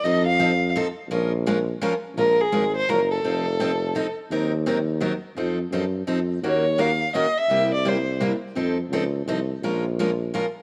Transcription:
X:1
M:3/4
L:1/16
Q:"Swing" 1/4=169
K:Bbm
V:1 name="Violin"
e2 f6 z4 | z12 | B2 A4 c2 B2 =A2- | =A8- A2 z2 |
z12 | z12 | d4 f4 e2 =e2- | =e2 =d2 c4 z4 |
z12 | z12 |]
V:2 name="Steel-string acoustic guitar"
[F,CE=A]2 z2 [F,CEA] z3 [F,CEA] z3 | [F,A,DFB]2 z2 [F,A,DFB] z3 [F,A,DFB] z3 | [F,A,DFB]2 z2 [F,A,DFB] z3 [F,A,DFB] z3 | [F,CE=A]2 z2 [F,CEA] z3 [F,CEA] z3 |
[E,G,CEB]2 z2 [E,G,CEB] z3 [E,G,CEB] z3 | [F,CE=A]2 z2 [F,CEA] z3 [F,CEA] z3 | [E,B,DGB]2 z2 [E,B,DGB] z3 [E,B,DGB] z3 | [C,=G,B,=E=G]2 z2 [C,G,B,EG] z3 [C,G,B,EG] z3 |
[F,CE=A]2 z2 [F,CEA] z3 [F,CEA] z3 | [F,A,DFB]2 z2 [F,A,DFB] z3 [F,A,DFB] z3 |]
V:3 name="Tuba" clef=bass
F,,12 | B,,,8- B,,, z3 | B,,,4 A,,,4 G,,,4 | F,,,12 |
E,,12 | F,,4 G,,4 F,,4 | E,,8- E,, z3 | C,,12 |
F,,4 D,,4 C,,4 | B,,,12 |]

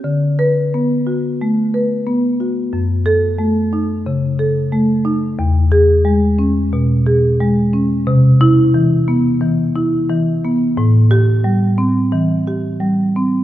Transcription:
X:1
M:4/4
L:1/8
Q:1/4=89
K:Em
V:1 name="Marimba"
z B2 z4 z | z A2 z4 z | z ^G2 z4 z | z E2 z4 z |
z G2 z4 z |]
V:2 name="Marimba"
D,2 B, F A, B B, F | F,,2 A, ^D ^C, A A, D | E,,2 ^G, ^C B,, ^G G, C | C,2 E, B, E, E E, B, |
A,,2 G, C E, G G, C |]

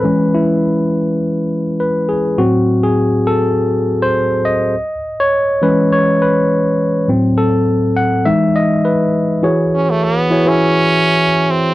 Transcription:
X:1
M:4/4
L:1/16
Q:"Swing 16ths" 1/4=102
K:E
V:1 name="Tine electric piano"
B2 E6 z4 B2 G2 | F3 G3 A4- A =c3 d2- | d3 c3 B2 c2 B4 z2 | z2 A4 f2 e2 d2 B4 |
[E,EFGc]4 z2 [E,EFGc] [E,EFGe]4- [E,EFGe] z4 |]
V:2 name="Tine electric piano" clef=bass
[E,G,C]16 | [A,,F,=C]2 z12 z2 | z6 [E,G,C]2 z8 | [A,,F,=C]2 z6 [E,G,D]2 z6 |
z16 |]
V:3 name="French horn"
z16 | z16 | z16 | z16 |
z2 C A, B,3 C6- C =C2 |]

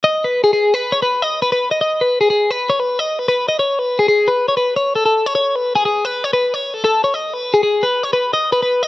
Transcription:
X:1
M:9/8
L:1/16
Q:3/8=101
K:G#phr
V:1 name="Clean electric guitar"
d2 B2 G G2 B2 c B2 d2 B B2 d | d2 B2 G G2 B2 c B2 d2 B B2 d | c2 B2 G G2 B2 c B2 c2 A A2 c | c2 B2 G G2 B2 c B2 c2 A A2 c |
d2 B2 G G2 B2 c B2 d2 B B2 d |]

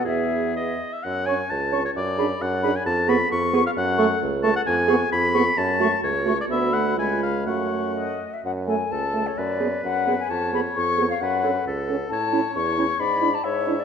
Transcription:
X:1
M:2/4
L:1/16
Q:1/4=132
K:E
V:1 name="Flute"
e6 z2 | [K:F#m] z2 c' z3 c' z | z2 b z3 b z | z2 c' z3 c' z |
z2 c' z3 c' z | z2 c' z3 c' z | z2 c' z3 c' z | b4 b4 |
c'4 ^d3 e | f2 g2 a3 c | d4 f3 g | a2 b2 c'3 ^e |
f4 z4 | [K:A] a4 c'4 | b3 a c3 d |]
V:2 name="Oboe"
G4 d3 e | [K:F#m] f2 g2 a3 c | d4 f3 g | a2 b2 c'3 ^e |
f4 z2 a f | g4 b4 | a4 c3 d | e2 f2 g2 ^e2 |
f6 z2 | z4 A4 | B8 | c8 |
B4 A4 | [K:A] c8 | d4 e4 |]
V:3 name="Clarinet"
G6 z2 | [K:F#m] z2 c z3 c z | z2 G z3 G z | z2 G z3 G z |
z2 A z3 A z | z2 G z3 G z | z2 F z3 F z | F4 ^E4 |
F6 z2 | z2 A z3 A z | z2 G z3 G z | z2 G z3 G z |
z2 A z3 A z | [K:A] z2 E z3 E z | z2 E z3 E z |]
V:4 name="French horn"
B,6 z2 | [K:F#m] z2 C z3 C z | z2 D z3 D z | z2 B, z3 B, z |
z2 A, z3 A, z | z2 B, z3 B, z | z2 A, z3 A, z | B,2 A,2 G,4 |
A,6 z2 | z2 A, z3 A, z | z2 B, z3 B, z | z2 B, z3 B, z |
z2 C z3 C z | [K:A] z2 C z3 C z | z2 D z3 D z |]
V:5 name="Bassoon" clef=bass
E,,6 z2 | [K:F#m] F,,4 C,,4 | F,,4 F,,4 | ^E,,4 E,,4 |
F,,4 C,,4 | ^E,,4 E,,4 | F,,4 C,,4 | D,,4 C,,4 |
F,,6 z2 | F,,4 C,,4 | F,,4 F,,4 | ^E,,4 E,,4 |
F,,4 C,,4 | [K:A] A,,4 E,,4 | G,,4 G,,4 |]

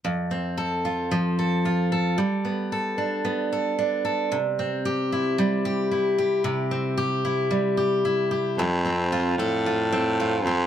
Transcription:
X:1
M:4/4
L:1/8
Q:"Swing 16ths" 1/4=112
K:Flyd
V:1 name="Steel-string acoustic guitar"
F,, C A F F, A F A | G, B, A D B, A D A | C, C G E G, G E G | C, C G E G, G E G |
F,, C F A F C F C |]
V:2 name="Baritone saxophone" clef=bass
z8 | z8 | z8 | z8 |
F,,3 A,,4 F,, |]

